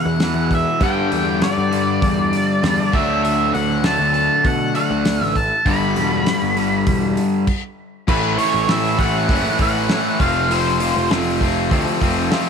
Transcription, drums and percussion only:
0.20 snare, open hi-hat
0.51 kick, open hi-hat
0.81 kick, open hi-hat
1.12 open hi-hat
1.42 snare, open hi-hat
1.73 open hi-hat
2.02 kick, open hi-hat
2.33 open hi-hat
2.64 snare, open hi-hat
2.93 kick, open hi-hat
3.25 open hi-hat
3.55 open hi-hat
3.84 snare, open hi-hat
4.14 open hi-hat
4.45 kick, open hi-hat
4.75 open hi-hat
5.05 snare, open hi-hat
5.36 kick, open hi-hat
5.66 kick, open hi-hat
5.96 open hi-hat
6.26 snare, open hi-hat
6.57 open hi-hat
6.87 kick, open hi-hat
7.17 open hi-hat
7.47 kick, crash
8.08 kick, crash
8.39 open hi-hat
8.69 snare, open hi-hat
8.99 kick, open hi-hat
9.29 kick, open hi-hat
9.59 kick, open hi-hat
9.89 snare, open hi-hat
10.20 kick, open hi-hat
10.51 open hi-hat
10.80 open hi-hat
11.11 snare, open hi-hat
11.41 kick, open hi-hat
11.71 kick, open hi-hat
12.02 kick, open hi-hat
12.31 snare, open hi-hat

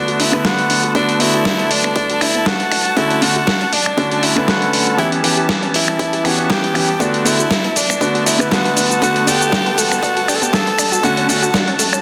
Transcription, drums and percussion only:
0.08 closed hi-hat
0.20 open hi-hat
0.33 finger snap
0.45 kick, snare, closed hi-hat
0.58 closed hi-hat
0.70 open hi-hat
0.84 closed hi-hat
0.95 kick, closed hi-hat
1.09 closed hi-hat
1.20 open hi-hat
1.34 closed hi-hat
1.45 kick, snare, closed hi-hat
1.59 closed hi-hat
1.71 open hi-hat
1.84 finger snap, closed hi-hat
1.96 kick, closed hi-hat
2.10 closed hi-hat
2.21 finger snap, open hi-hat
2.35 closed hi-hat
2.46 kick, snare, closed hi-hat
2.60 closed hi-hat
2.72 finger snap, open hi-hat
2.85 closed hi-hat
2.97 kick, closed hi-hat
3.10 closed hi-hat
3.22 open hi-hat
3.36 closed hi-hat
3.47 kick, snare, closed hi-hat
3.61 closed hi-hat
3.73 open hi-hat
3.86 finger snap
3.98 kick, closed hi-hat
4.12 closed hi-hat
4.23 open hi-hat
4.37 finger snap, closed hi-hat
4.48 kick, snare, closed hi-hat
4.62 closed hi-hat
4.73 open hi-hat
4.87 closed hi-hat
4.98 kick, closed hi-hat
5.12 closed hi-hat
5.24 open hi-hat
5.38 closed hi-hat
5.49 kick, snare, closed hi-hat
5.63 closed hi-hat
5.74 open hi-hat
5.88 finger snap
5.99 kick, closed hi-hat
6.13 closed hi-hat
6.25 finger snap, open hi-hat
6.39 closed hi-hat
6.50 kick, snare, closed hi-hat
6.64 closed hi-hat
6.75 finger snap, open hi-hat
6.89 closed hi-hat
7.00 kick, closed hi-hat, cabasa
7.14 closed hi-hat
7.26 open hi-hat, cabasa
7.40 cabasa
7.51 kick, snare, closed hi-hat, cabasa
7.64 closed hi-hat
7.76 open hi-hat, cabasa
7.90 finger snap, cabasa
8.01 kick, closed hi-hat, cabasa
8.15 closed hi-hat
8.26 open hi-hat, cabasa
8.40 finger snap, closed hi-hat, cabasa
8.51 kick, snare, closed hi-hat, cabasa
8.65 closed hi-hat
8.77 open hi-hat, cabasa
8.91 closed hi-hat, cabasa
9.02 kick, closed hi-hat, cabasa
9.16 closed hi-hat
9.27 open hi-hat, cabasa
9.41 closed hi-hat, cabasa
9.52 kick, snare, closed hi-hat, cabasa
9.66 closed hi-hat
9.78 open hi-hat, cabasa
9.92 finger snap, closed hi-hat, cabasa
10.03 kick, closed hi-hat, cabasa
10.17 closed hi-hat
10.28 finger snap, open hi-hat, cabasa
10.42 closed hi-hat, cabasa
10.53 kick, snare, closed hi-hat, cabasa
10.67 closed hi-hat
10.79 finger snap, open hi-hat, cabasa
10.92 closed hi-hat, cabasa
11.03 kick, closed hi-hat, cabasa
11.17 closed hi-hat
11.29 open hi-hat, cabasa
11.42 closed hi-hat, cabasa
11.54 kick, snare, closed hi-hat, cabasa
11.68 closed hi-hat
11.79 open hi-hat, cabasa
11.93 finger snap, cabasa

